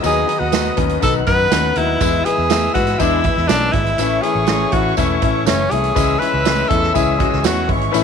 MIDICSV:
0, 0, Header, 1, 7, 480
1, 0, Start_track
1, 0, Tempo, 493827
1, 35, Time_signature, 4, 2, 24, 8
1, 7812, End_track
2, 0, Start_track
2, 0, Title_t, "Violin section"
2, 0, Program_c, 0, 48
2, 24, Note_on_c, 0, 87, 81
2, 28, Note_on_c, 0, 75, 81
2, 971, Note_off_c, 0, 87, 0
2, 972, Note_off_c, 0, 75, 0
2, 997, Note_on_c, 0, 90, 82
2, 1000, Note_on_c, 0, 78, 67
2, 1937, Note_off_c, 0, 90, 0
2, 1939, Note_off_c, 0, 78, 0
2, 1967, Note_on_c, 0, 88, 88
2, 1969, Note_on_c, 0, 76, 76
2, 3843, Note_off_c, 0, 88, 0
2, 3844, Note_off_c, 0, 76, 0
2, 3875, Note_on_c, 0, 85, 93
2, 3880, Note_on_c, 0, 73, 76
2, 5756, Note_off_c, 0, 85, 0
2, 5758, Note_off_c, 0, 73, 0
2, 5785, Note_on_c, 0, 76, 84
2, 5794, Note_on_c, 0, 88, 94
2, 7200, Note_off_c, 0, 76, 0
2, 7204, Note_off_c, 0, 88, 0
2, 7232, Note_on_c, 0, 85, 88
2, 7235, Note_on_c, 0, 73, 87
2, 7703, Note_off_c, 0, 85, 0
2, 7704, Note_off_c, 0, 73, 0
2, 7707, Note_on_c, 0, 83, 87
2, 7708, Note_on_c, 0, 71, 84
2, 7812, Note_off_c, 0, 71, 0
2, 7812, Note_off_c, 0, 83, 0
2, 7812, End_track
3, 0, Start_track
3, 0, Title_t, "Tonewheel organ"
3, 0, Program_c, 1, 16
3, 29, Note_on_c, 1, 75, 63
3, 29, Note_on_c, 1, 83, 76
3, 30, Note_on_c, 1, 71, 65
3, 30, Note_on_c, 1, 78, 56
3, 1934, Note_off_c, 1, 75, 0
3, 1934, Note_off_c, 1, 78, 0
3, 1957, Note_on_c, 1, 76, 63
3, 1960, Note_on_c, 1, 80, 63
3, 3834, Note_off_c, 1, 71, 0
3, 3834, Note_off_c, 1, 83, 0
3, 3858, Note_off_c, 1, 80, 0
3, 3884, Note_on_c, 1, 85, 76
3, 3888, Note_on_c, 1, 73, 66
3, 5799, Note_on_c, 1, 80, 64
3, 7696, Note_off_c, 1, 80, 0
3, 7812, Note_off_c, 1, 73, 0
3, 7812, Note_off_c, 1, 76, 0
3, 7812, Note_off_c, 1, 85, 0
3, 7812, End_track
4, 0, Start_track
4, 0, Title_t, "Tenor saxophone"
4, 0, Program_c, 2, 66
4, 62, Note_on_c, 2, 68, 99
4, 380, Note_on_c, 2, 66, 86
4, 395, Note_off_c, 2, 68, 0
4, 749, Note_off_c, 2, 66, 0
4, 1005, Note_on_c, 2, 69, 90
4, 1111, Note_off_c, 2, 69, 0
4, 1235, Note_on_c, 2, 71, 111
4, 1726, Note_on_c, 2, 64, 94
4, 1741, Note_off_c, 2, 71, 0
4, 2193, Note_on_c, 2, 68, 105
4, 2208, Note_off_c, 2, 64, 0
4, 2657, Note_off_c, 2, 68, 0
4, 2663, Note_on_c, 2, 66, 97
4, 2912, Note_on_c, 2, 64, 96
4, 2926, Note_off_c, 2, 66, 0
4, 3377, Note_on_c, 2, 62, 103
4, 3391, Note_off_c, 2, 64, 0
4, 3618, Note_on_c, 2, 64, 98
4, 3632, Note_off_c, 2, 62, 0
4, 4103, Note_on_c, 2, 68, 98
4, 4118, Note_off_c, 2, 64, 0
4, 4595, Note_on_c, 2, 66, 87
4, 4609, Note_off_c, 2, 68, 0
4, 4826, Note_off_c, 2, 66, 0
4, 4832, Note_on_c, 2, 64, 86
4, 5310, Note_on_c, 2, 61, 98
4, 5325, Note_off_c, 2, 64, 0
4, 5552, Note_on_c, 2, 68, 93
4, 5567, Note_off_c, 2, 61, 0
4, 6017, Note_on_c, 2, 71, 106
4, 6032, Note_off_c, 2, 68, 0
4, 6500, Note_on_c, 2, 69, 102
4, 6515, Note_off_c, 2, 71, 0
4, 6747, Note_off_c, 2, 69, 0
4, 6758, Note_on_c, 2, 68, 89
4, 7239, Note_on_c, 2, 66, 94
4, 7254, Note_off_c, 2, 68, 0
4, 7476, Note_off_c, 2, 66, 0
4, 7812, End_track
5, 0, Start_track
5, 0, Title_t, "Grand piano"
5, 0, Program_c, 3, 0
5, 17, Note_on_c, 3, 51, 98
5, 25, Note_on_c, 3, 54, 98
5, 32, Note_on_c, 3, 59, 93
5, 40, Note_on_c, 3, 63, 114
5, 206, Note_off_c, 3, 51, 0
5, 211, Note_off_c, 3, 54, 0
5, 214, Note_off_c, 3, 59, 0
5, 218, Note_off_c, 3, 63, 0
5, 255, Note_on_c, 3, 51, 78
5, 262, Note_on_c, 3, 54, 68
5, 266, Note_on_c, 3, 59, 66
5, 272, Note_on_c, 3, 63, 83
5, 445, Note_off_c, 3, 51, 0
5, 449, Note_off_c, 3, 54, 0
5, 451, Note_off_c, 3, 59, 0
5, 454, Note_off_c, 3, 63, 0
5, 491, Note_on_c, 3, 51, 77
5, 497, Note_on_c, 3, 54, 68
5, 503, Note_on_c, 3, 59, 65
5, 512, Note_on_c, 3, 63, 81
5, 684, Note_off_c, 3, 51, 0
5, 686, Note_off_c, 3, 54, 0
5, 690, Note_off_c, 3, 59, 0
5, 694, Note_off_c, 3, 63, 0
5, 737, Note_on_c, 3, 51, 76
5, 739, Note_on_c, 3, 54, 68
5, 743, Note_on_c, 3, 59, 75
5, 753, Note_on_c, 3, 61, 87
5, 927, Note_off_c, 3, 51, 0
5, 927, Note_off_c, 3, 54, 0
5, 929, Note_off_c, 3, 59, 0
5, 935, Note_off_c, 3, 61, 0
5, 973, Note_on_c, 3, 51, 91
5, 986, Note_on_c, 3, 54, 86
5, 991, Note_on_c, 3, 59, 88
5, 999, Note_on_c, 3, 63, 103
5, 1165, Note_off_c, 3, 51, 0
5, 1171, Note_off_c, 3, 54, 0
5, 1174, Note_off_c, 3, 59, 0
5, 1178, Note_off_c, 3, 63, 0
5, 1230, Note_on_c, 3, 51, 80
5, 1235, Note_on_c, 3, 54, 77
5, 1243, Note_on_c, 3, 59, 73
5, 1250, Note_on_c, 3, 63, 95
5, 1413, Note_off_c, 3, 51, 0
5, 1416, Note_off_c, 3, 54, 0
5, 1419, Note_off_c, 3, 59, 0
5, 1423, Note_off_c, 3, 63, 0
5, 1464, Note_on_c, 3, 51, 74
5, 1468, Note_on_c, 3, 54, 70
5, 1482, Note_on_c, 3, 59, 71
5, 1483, Note_on_c, 3, 61, 83
5, 1650, Note_off_c, 3, 51, 0
5, 1652, Note_off_c, 3, 54, 0
5, 1659, Note_off_c, 3, 59, 0
5, 1660, Note_off_c, 3, 61, 0
5, 1713, Note_on_c, 3, 51, 79
5, 1717, Note_on_c, 3, 54, 75
5, 1722, Note_on_c, 3, 59, 69
5, 1726, Note_on_c, 3, 63, 86
5, 1895, Note_off_c, 3, 51, 0
5, 1897, Note_off_c, 3, 54, 0
5, 1899, Note_off_c, 3, 59, 0
5, 1901, Note_off_c, 3, 63, 0
5, 1949, Note_on_c, 3, 52, 93
5, 1957, Note_on_c, 3, 56, 93
5, 1964, Note_on_c, 3, 59, 80
5, 1967, Note_on_c, 3, 64, 111
5, 2133, Note_off_c, 3, 52, 0
5, 2137, Note_off_c, 3, 56, 0
5, 2140, Note_off_c, 3, 59, 0
5, 2142, Note_off_c, 3, 64, 0
5, 2197, Note_on_c, 3, 52, 76
5, 2202, Note_on_c, 3, 56, 63
5, 2208, Note_on_c, 3, 59, 68
5, 2216, Note_on_c, 3, 64, 74
5, 2377, Note_off_c, 3, 52, 0
5, 2379, Note_off_c, 3, 56, 0
5, 2382, Note_off_c, 3, 59, 0
5, 2386, Note_off_c, 3, 64, 0
5, 2423, Note_on_c, 3, 52, 76
5, 2426, Note_on_c, 3, 56, 70
5, 2432, Note_on_c, 3, 59, 69
5, 2438, Note_on_c, 3, 64, 86
5, 2610, Note_off_c, 3, 52, 0
5, 2611, Note_off_c, 3, 56, 0
5, 2614, Note_off_c, 3, 59, 0
5, 2617, Note_off_c, 3, 64, 0
5, 2657, Note_on_c, 3, 52, 80
5, 2666, Note_on_c, 3, 56, 70
5, 2669, Note_on_c, 3, 59, 74
5, 2673, Note_on_c, 3, 64, 89
5, 2847, Note_off_c, 3, 52, 0
5, 2851, Note_off_c, 3, 56, 0
5, 2853, Note_off_c, 3, 59, 0
5, 2855, Note_off_c, 3, 64, 0
5, 2902, Note_on_c, 3, 52, 92
5, 2908, Note_on_c, 3, 56, 94
5, 2911, Note_on_c, 3, 59, 85
5, 2921, Note_on_c, 3, 62, 115
5, 3089, Note_off_c, 3, 52, 0
5, 3092, Note_off_c, 3, 56, 0
5, 3093, Note_off_c, 3, 59, 0
5, 3099, Note_off_c, 3, 62, 0
5, 3146, Note_on_c, 3, 52, 82
5, 3148, Note_on_c, 3, 56, 70
5, 3156, Note_on_c, 3, 59, 71
5, 3156, Note_on_c, 3, 64, 99
5, 3331, Note_off_c, 3, 52, 0
5, 3332, Note_off_c, 3, 56, 0
5, 3336, Note_off_c, 3, 59, 0
5, 3336, Note_off_c, 3, 64, 0
5, 3372, Note_on_c, 3, 52, 83
5, 3382, Note_on_c, 3, 56, 74
5, 3388, Note_on_c, 3, 59, 72
5, 3392, Note_on_c, 3, 61, 84
5, 3564, Note_off_c, 3, 52, 0
5, 3569, Note_off_c, 3, 56, 0
5, 3572, Note_off_c, 3, 59, 0
5, 3574, Note_off_c, 3, 61, 0
5, 3623, Note_on_c, 3, 52, 79
5, 3629, Note_on_c, 3, 56, 68
5, 3636, Note_on_c, 3, 59, 75
5, 3645, Note_on_c, 3, 64, 86
5, 3809, Note_off_c, 3, 52, 0
5, 3813, Note_off_c, 3, 56, 0
5, 3816, Note_off_c, 3, 59, 0
5, 3821, Note_off_c, 3, 64, 0
5, 3869, Note_on_c, 3, 52, 103
5, 3876, Note_on_c, 3, 57, 81
5, 3881, Note_on_c, 3, 61, 84
5, 3885, Note_on_c, 3, 64, 109
5, 4052, Note_off_c, 3, 52, 0
5, 4056, Note_off_c, 3, 57, 0
5, 4059, Note_off_c, 3, 61, 0
5, 4060, Note_off_c, 3, 64, 0
5, 4104, Note_on_c, 3, 52, 77
5, 4112, Note_on_c, 3, 57, 73
5, 4118, Note_on_c, 3, 61, 67
5, 4124, Note_on_c, 3, 64, 81
5, 4290, Note_off_c, 3, 52, 0
5, 4294, Note_off_c, 3, 57, 0
5, 4297, Note_off_c, 3, 61, 0
5, 4300, Note_off_c, 3, 64, 0
5, 4347, Note_on_c, 3, 52, 86
5, 4357, Note_on_c, 3, 57, 74
5, 4357, Note_on_c, 3, 61, 75
5, 4363, Note_on_c, 3, 64, 83
5, 4531, Note_off_c, 3, 52, 0
5, 4536, Note_off_c, 3, 57, 0
5, 4536, Note_off_c, 3, 61, 0
5, 4540, Note_off_c, 3, 64, 0
5, 4584, Note_on_c, 3, 52, 83
5, 4591, Note_on_c, 3, 57, 72
5, 4598, Note_on_c, 3, 61, 68
5, 4603, Note_on_c, 3, 64, 86
5, 4770, Note_off_c, 3, 52, 0
5, 4773, Note_off_c, 3, 57, 0
5, 4777, Note_off_c, 3, 61, 0
5, 4780, Note_off_c, 3, 64, 0
5, 4831, Note_on_c, 3, 52, 96
5, 4833, Note_on_c, 3, 57, 98
5, 4841, Note_on_c, 3, 61, 96
5, 4850, Note_on_c, 3, 64, 104
5, 5013, Note_off_c, 3, 52, 0
5, 5014, Note_off_c, 3, 57, 0
5, 5018, Note_off_c, 3, 61, 0
5, 5023, Note_off_c, 3, 64, 0
5, 5067, Note_on_c, 3, 52, 75
5, 5068, Note_on_c, 3, 57, 81
5, 5076, Note_on_c, 3, 61, 80
5, 5080, Note_on_c, 3, 64, 88
5, 5251, Note_off_c, 3, 52, 0
5, 5252, Note_off_c, 3, 57, 0
5, 5256, Note_off_c, 3, 61, 0
5, 5258, Note_off_c, 3, 64, 0
5, 5302, Note_on_c, 3, 52, 83
5, 5306, Note_on_c, 3, 57, 68
5, 5314, Note_on_c, 3, 61, 67
5, 5321, Note_on_c, 3, 64, 85
5, 5489, Note_off_c, 3, 52, 0
5, 5491, Note_off_c, 3, 57, 0
5, 5495, Note_off_c, 3, 61, 0
5, 5498, Note_off_c, 3, 64, 0
5, 5546, Note_on_c, 3, 52, 75
5, 5551, Note_on_c, 3, 57, 72
5, 5554, Note_on_c, 3, 61, 66
5, 5565, Note_on_c, 3, 64, 91
5, 5731, Note_off_c, 3, 52, 0
5, 5733, Note_off_c, 3, 57, 0
5, 5735, Note_off_c, 3, 61, 0
5, 5740, Note_off_c, 3, 64, 0
5, 5779, Note_on_c, 3, 52, 98
5, 5787, Note_on_c, 3, 56, 96
5, 5791, Note_on_c, 3, 61, 96
5, 5798, Note_on_c, 3, 64, 113
5, 5967, Note_off_c, 3, 52, 0
5, 5971, Note_off_c, 3, 56, 0
5, 5973, Note_off_c, 3, 61, 0
5, 5976, Note_off_c, 3, 64, 0
5, 6023, Note_on_c, 3, 52, 78
5, 6028, Note_on_c, 3, 56, 77
5, 6040, Note_on_c, 3, 61, 69
5, 6040, Note_on_c, 3, 64, 83
5, 6209, Note_off_c, 3, 52, 0
5, 6211, Note_off_c, 3, 56, 0
5, 6217, Note_off_c, 3, 61, 0
5, 6217, Note_off_c, 3, 64, 0
5, 6259, Note_on_c, 3, 52, 75
5, 6269, Note_on_c, 3, 56, 79
5, 6272, Note_on_c, 3, 61, 69
5, 6281, Note_on_c, 3, 64, 79
5, 6447, Note_off_c, 3, 52, 0
5, 6452, Note_off_c, 3, 56, 0
5, 6453, Note_off_c, 3, 61, 0
5, 6458, Note_off_c, 3, 64, 0
5, 6492, Note_on_c, 3, 52, 78
5, 6504, Note_on_c, 3, 56, 71
5, 6506, Note_on_c, 3, 61, 74
5, 6511, Note_on_c, 3, 64, 92
5, 6683, Note_off_c, 3, 52, 0
5, 6689, Note_off_c, 3, 56, 0
5, 6690, Note_off_c, 3, 61, 0
5, 6693, Note_off_c, 3, 64, 0
5, 6735, Note_on_c, 3, 52, 94
5, 6745, Note_on_c, 3, 56, 80
5, 6749, Note_on_c, 3, 61, 87
5, 6752, Note_on_c, 3, 64, 116
5, 6925, Note_off_c, 3, 52, 0
5, 6929, Note_off_c, 3, 56, 0
5, 6932, Note_off_c, 3, 61, 0
5, 6933, Note_off_c, 3, 64, 0
5, 6970, Note_on_c, 3, 52, 81
5, 6981, Note_on_c, 3, 56, 80
5, 6987, Note_on_c, 3, 61, 83
5, 6993, Note_on_c, 3, 66, 92
5, 7162, Note_off_c, 3, 52, 0
5, 7168, Note_off_c, 3, 56, 0
5, 7171, Note_off_c, 3, 61, 0
5, 7174, Note_off_c, 3, 66, 0
5, 7217, Note_on_c, 3, 52, 68
5, 7223, Note_on_c, 3, 56, 71
5, 7232, Note_on_c, 3, 61, 68
5, 7233, Note_on_c, 3, 64, 80
5, 7405, Note_off_c, 3, 52, 0
5, 7408, Note_off_c, 3, 56, 0
5, 7413, Note_off_c, 3, 61, 0
5, 7414, Note_off_c, 3, 64, 0
5, 7456, Note_on_c, 3, 52, 74
5, 7463, Note_on_c, 3, 56, 76
5, 7465, Note_on_c, 3, 61, 69
5, 7475, Note_on_c, 3, 64, 87
5, 7645, Note_off_c, 3, 52, 0
5, 7648, Note_off_c, 3, 56, 0
5, 7649, Note_off_c, 3, 61, 0
5, 7654, Note_off_c, 3, 64, 0
5, 7694, Note_on_c, 3, 52, 127
5, 7703, Note_on_c, 3, 57, 117
5, 7714, Note_on_c, 3, 61, 106
5, 7717, Note_on_c, 3, 64, 127
5, 7812, Note_off_c, 3, 52, 0
5, 7812, Note_off_c, 3, 57, 0
5, 7812, Note_off_c, 3, 61, 0
5, 7812, Note_off_c, 3, 64, 0
5, 7812, End_track
6, 0, Start_track
6, 0, Title_t, "Fingered electric bass"
6, 0, Program_c, 4, 33
6, 38, Note_on_c, 4, 39, 99
6, 224, Note_off_c, 4, 39, 0
6, 394, Note_on_c, 4, 39, 88
6, 675, Note_off_c, 4, 39, 0
6, 756, Note_on_c, 4, 39, 81
6, 943, Note_off_c, 4, 39, 0
6, 1002, Note_on_c, 4, 35, 98
6, 1187, Note_off_c, 4, 35, 0
6, 1239, Note_on_c, 4, 42, 89
6, 1425, Note_off_c, 4, 42, 0
6, 1474, Note_on_c, 4, 39, 99
6, 1662, Note_off_c, 4, 39, 0
6, 1715, Note_on_c, 4, 39, 98
6, 1902, Note_off_c, 4, 39, 0
6, 1954, Note_on_c, 4, 40, 91
6, 2142, Note_off_c, 4, 40, 0
6, 2313, Note_on_c, 4, 40, 84
6, 2595, Note_off_c, 4, 40, 0
6, 2674, Note_on_c, 4, 44, 85
6, 2862, Note_off_c, 4, 44, 0
6, 2916, Note_on_c, 4, 40, 96
6, 3196, Note_off_c, 4, 40, 0
6, 3281, Note_on_c, 4, 40, 81
6, 3373, Note_off_c, 4, 40, 0
6, 3398, Note_on_c, 4, 35, 98
6, 3584, Note_off_c, 4, 35, 0
6, 3633, Note_on_c, 4, 32, 100
6, 3821, Note_off_c, 4, 32, 0
6, 3872, Note_on_c, 4, 33, 99
6, 4061, Note_off_c, 4, 33, 0
6, 4229, Note_on_c, 4, 33, 100
6, 4512, Note_off_c, 4, 33, 0
6, 4596, Note_on_c, 4, 33, 89
6, 4782, Note_off_c, 4, 33, 0
6, 4843, Note_on_c, 4, 28, 99
6, 5027, Note_off_c, 4, 28, 0
6, 5082, Note_on_c, 4, 33, 99
6, 5312, Note_on_c, 4, 30, 100
6, 5327, Note_off_c, 4, 33, 0
6, 5500, Note_off_c, 4, 30, 0
6, 5554, Note_on_c, 4, 36, 88
6, 5741, Note_off_c, 4, 36, 0
6, 5797, Note_on_c, 4, 37, 116
6, 5983, Note_off_c, 4, 37, 0
6, 6156, Note_on_c, 4, 37, 113
6, 6436, Note_off_c, 4, 37, 0
6, 6520, Note_on_c, 4, 40, 103
6, 6704, Note_off_c, 4, 40, 0
6, 6762, Note_on_c, 4, 37, 99
6, 7039, Note_off_c, 4, 37, 0
6, 7126, Note_on_c, 4, 37, 88
6, 7215, Note_off_c, 4, 37, 0
6, 7238, Note_on_c, 4, 40, 100
6, 7475, Note_on_c, 4, 32, 79
6, 7490, Note_off_c, 4, 40, 0
6, 7662, Note_off_c, 4, 32, 0
6, 7723, Note_on_c, 4, 33, 93
6, 7812, Note_off_c, 4, 33, 0
6, 7812, End_track
7, 0, Start_track
7, 0, Title_t, "Drums"
7, 33, Note_on_c, 9, 42, 90
7, 39, Note_on_c, 9, 54, 86
7, 130, Note_off_c, 9, 42, 0
7, 136, Note_off_c, 9, 54, 0
7, 279, Note_on_c, 9, 42, 77
7, 376, Note_off_c, 9, 42, 0
7, 505, Note_on_c, 9, 42, 77
7, 512, Note_on_c, 9, 54, 83
7, 514, Note_on_c, 9, 38, 116
7, 602, Note_off_c, 9, 42, 0
7, 609, Note_off_c, 9, 54, 0
7, 611, Note_off_c, 9, 38, 0
7, 747, Note_on_c, 9, 42, 82
7, 756, Note_on_c, 9, 36, 98
7, 844, Note_off_c, 9, 42, 0
7, 854, Note_off_c, 9, 36, 0
7, 868, Note_on_c, 9, 42, 52
7, 965, Note_off_c, 9, 42, 0
7, 993, Note_on_c, 9, 42, 73
7, 998, Note_on_c, 9, 54, 83
7, 999, Note_on_c, 9, 36, 88
7, 1090, Note_off_c, 9, 42, 0
7, 1095, Note_off_c, 9, 54, 0
7, 1096, Note_off_c, 9, 36, 0
7, 1229, Note_on_c, 9, 42, 72
7, 1238, Note_on_c, 9, 36, 95
7, 1326, Note_off_c, 9, 42, 0
7, 1335, Note_off_c, 9, 36, 0
7, 1471, Note_on_c, 9, 42, 103
7, 1473, Note_on_c, 9, 38, 113
7, 1475, Note_on_c, 9, 54, 91
7, 1569, Note_off_c, 9, 42, 0
7, 1570, Note_off_c, 9, 38, 0
7, 1573, Note_off_c, 9, 54, 0
7, 1706, Note_on_c, 9, 42, 74
7, 1803, Note_off_c, 9, 42, 0
7, 1947, Note_on_c, 9, 42, 78
7, 1953, Note_on_c, 9, 36, 106
7, 1953, Note_on_c, 9, 54, 85
7, 2044, Note_off_c, 9, 42, 0
7, 2050, Note_off_c, 9, 36, 0
7, 2050, Note_off_c, 9, 54, 0
7, 2194, Note_on_c, 9, 42, 77
7, 2291, Note_off_c, 9, 42, 0
7, 2425, Note_on_c, 9, 42, 83
7, 2432, Note_on_c, 9, 54, 81
7, 2434, Note_on_c, 9, 38, 116
7, 2522, Note_off_c, 9, 42, 0
7, 2529, Note_off_c, 9, 54, 0
7, 2531, Note_off_c, 9, 38, 0
7, 2670, Note_on_c, 9, 42, 78
7, 2676, Note_on_c, 9, 36, 99
7, 2677, Note_on_c, 9, 38, 33
7, 2767, Note_off_c, 9, 42, 0
7, 2773, Note_off_c, 9, 36, 0
7, 2774, Note_off_c, 9, 38, 0
7, 2787, Note_on_c, 9, 42, 52
7, 2791, Note_on_c, 9, 38, 37
7, 2884, Note_off_c, 9, 42, 0
7, 2888, Note_off_c, 9, 38, 0
7, 2911, Note_on_c, 9, 42, 77
7, 2913, Note_on_c, 9, 54, 82
7, 2917, Note_on_c, 9, 36, 90
7, 3008, Note_off_c, 9, 42, 0
7, 3010, Note_off_c, 9, 54, 0
7, 3014, Note_off_c, 9, 36, 0
7, 3147, Note_on_c, 9, 42, 75
7, 3156, Note_on_c, 9, 36, 105
7, 3244, Note_off_c, 9, 42, 0
7, 3254, Note_off_c, 9, 36, 0
7, 3276, Note_on_c, 9, 38, 35
7, 3374, Note_off_c, 9, 38, 0
7, 3392, Note_on_c, 9, 42, 101
7, 3393, Note_on_c, 9, 38, 113
7, 3395, Note_on_c, 9, 54, 84
7, 3489, Note_off_c, 9, 42, 0
7, 3490, Note_off_c, 9, 38, 0
7, 3492, Note_off_c, 9, 54, 0
7, 3628, Note_on_c, 9, 42, 74
7, 3632, Note_on_c, 9, 36, 98
7, 3725, Note_off_c, 9, 42, 0
7, 3729, Note_off_c, 9, 36, 0
7, 3756, Note_on_c, 9, 42, 53
7, 3853, Note_off_c, 9, 42, 0
7, 3868, Note_on_c, 9, 42, 88
7, 3875, Note_on_c, 9, 54, 84
7, 3966, Note_off_c, 9, 42, 0
7, 3972, Note_off_c, 9, 54, 0
7, 4114, Note_on_c, 9, 42, 78
7, 4211, Note_off_c, 9, 42, 0
7, 4339, Note_on_c, 9, 42, 76
7, 4348, Note_on_c, 9, 38, 127
7, 4351, Note_on_c, 9, 54, 81
7, 4436, Note_off_c, 9, 42, 0
7, 4446, Note_off_c, 9, 38, 0
7, 4448, Note_off_c, 9, 54, 0
7, 4587, Note_on_c, 9, 42, 79
7, 4596, Note_on_c, 9, 36, 97
7, 4684, Note_off_c, 9, 42, 0
7, 4693, Note_off_c, 9, 36, 0
7, 4832, Note_on_c, 9, 54, 80
7, 4836, Note_on_c, 9, 42, 76
7, 4839, Note_on_c, 9, 36, 92
7, 4929, Note_off_c, 9, 54, 0
7, 4933, Note_off_c, 9, 42, 0
7, 4936, Note_off_c, 9, 36, 0
7, 5071, Note_on_c, 9, 42, 73
7, 5078, Note_on_c, 9, 36, 93
7, 5169, Note_off_c, 9, 42, 0
7, 5175, Note_off_c, 9, 36, 0
7, 5312, Note_on_c, 9, 54, 96
7, 5318, Note_on_c, 9, 42, 99
7, 5319, Note_on_c, 9, 38, 108
7, 5409, Note_off_c, 9, 54, 0
7, 5415, Note_off_c, 9, 42, 0
7, 5416, Note_off_c, 9, 38, 0
7, 5551, Note_on_c, 9, 42, 68
7, 5648, Note_off_c, 9, 42, 0
7, 5672, Note_on_c, 9, 42, 50
7, 5770, Note_off_c, 9, 42, 0
7, 5795, Note_on_c, 9, 36, 103
7, 5796, Note_on_c, 9, 42, 86
7, 5799, Note_on_c, 9, 54, 87
7, 5892, Note_off_c, 9, 36, 0
7, 5893, Note_off_c, 9, 42, 0
7, 5896, Note_off_c, 9, 54, 0
7, 6043, Note_on_c, 9, 42, 74
7, 6141, Note_off_c, 9, 42, 0
7, 6271, Note_on_c, 9, 42, 85
7, 6273, Note_on_c, 9, 54, 83
7, 6280, Note_on_c, 9, 38, 125
7, 6368, Note_off_c, 9, 42, 0
7, 6370, Note_off_c, 9, 54, 0
7, 6377, Note_off_c, 9, 38, 0
7, 6516, Note_on_c, 9, 42, 82
7, 6519, Note_on_c, 9, 36, 107
7, 6613, Note_off_c, 9, 42, 0
7, 6616, Note_off_c, 9, 36, 0
7, 6641, Note_on_c, 9, 38, 37
7, 6739, Note_off_c, 9, 38, 0
7, 6758, Note_on_c, 9, 54, 80
7, 6762, Note_on_c, 9, 36, 85
7, 6765, Note_on_c, 9, 42, 79
7, 6855, Note_off_c, 9, 54, 0
7, 6859, Note_off_c, 9, 36, 0
7, 6862, Note_off_c, 9, 42, 0
7, 6996, Note_on_c, 9, 42, 74
7, 7000, Note_on_c, 9, 36, 98
7, 7093, Note_off_c, 9, 42, 0
7, 7097, Note_off_c, 9, 36, 0
7, 7123, Note_on_c, 9, 38, 37
7, 7220, Note_off_c, 9, 38, 0
7, 7234, Note_on_c, 9, 54, 101
7, 7238, Note_on_c, 9, 42, 89
7, 7239, Note_on_c, 9, 38, 108
7, 7331, Note_off_c, 9, 54, 0
7, 7335, Note_off_c, 9, 42, 0
7, 7337, Note_off_c, 9, 38, 0
7, 7473, Note_on_c, 9, 46, 51
7, 7475, Note_on_c, 9, 36, 102
7, 7571, Note_off_c, 9, 46, 0
7, 7572, Note_off_c, 9, 36, 0
7, 7596, Note_on_c, 9, 42, 49
7, 7693, Note_off_c, 9, 42, 0
7, 7717, Note_on_c, 9, 54, 79
7, 7720, Note_on_c, 9, 42, 88
7, 7812, Note_off_c, 9, 42, 0
7, 7812, Note_off_c, 9, 54, 0
7, 7812, End_track
0, 0, End_of_file